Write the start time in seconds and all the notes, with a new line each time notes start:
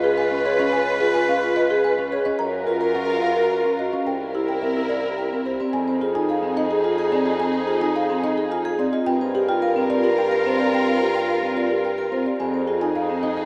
Already playing: C#2 F4 B4
0.04 G#4
0.18 B4 G#5
0.31 C#4
0.46 G#4 C#5
0.59 C#4 D#5
0.73 C#5 G#5
1.00 F4 G#4
1.14 B4 G#5
1.29 C#4 F5
1.43 F4
1.56 B4 D#5
1.70 G#4
1.84 B4 G#5
1.99 C#4
2.12 G#4 C#5
2.25 C#4 D#5
2.39 F#2 F4 A#4 C#5 A#5
2.67 F4 A#4
2.81 A#4 A#5
2.95 C#4 F#5
3.10 F4
3.22 A#4 F5
3.36 F#4 A#4
3.50 A#4 A#5
3.65 C#4
3.79 F#4 D#5
3.93 C#4 F5
4.06 C2 E4 A#4 C5 G5
4.34 E4 G4
4.48 A#4 G5
4.62 C4 E5
4.77 E4
4.89 A#4 D5
5.04 G4
5.18 A#4 G5
5.33 C4
5.46 G4 C5
5.60 C4 D5
5.73 F2 C4 D#4 G#4 G#5
5.88 C5
6.01 F4 G#4
6.15 D#4 G#5
6.29 G#4 F5
6.43 C4
6.57 D#4 D#5
6.71 G#4
6.84 F4 G#5
6.98 G#4
7.12 C4 D5
7.26 F4 D#5
7.40 C4 G#5
7.54 C5
7.67 F4 G#4
7.81 D#4 G#5
7.95 G#4 F5
8.10 C4
8.23 D#4 D#5
8.37 G#4
8.51 F4 G#5
8.65 G#4
8.79 C4 D5
8.93 F4 D#5
9.06 G2 C4 F4 A#4 G5
9.21 C5
9.35 G4
9.49 F4 G5
9.62 A#4 F5
9.76 C4
9.90 F4 D5
10.04 G4 A#4
10.18 G4 G5
10.32 A#4
10.46 C4 C5
10.60 G4 D5
10.73 C4 G5
10.87 C5
11.01 G4
11.15 F4 G5
11.29 A#4 F5
11.43 C4
11.57 F4 D5
11.70 G4 A#4
11.84 G4 G5
11.98 A#4
12.12 C4 C5
12.26 G4 D5
12.40 F2 C4 D#4 G#4 G#5
12.54 C5
12.67 F4 G#4
12.81 D#4 G#5
12.96 G#4 F5
13.10 C4
13.23 D#4 D#5
13.37 G#4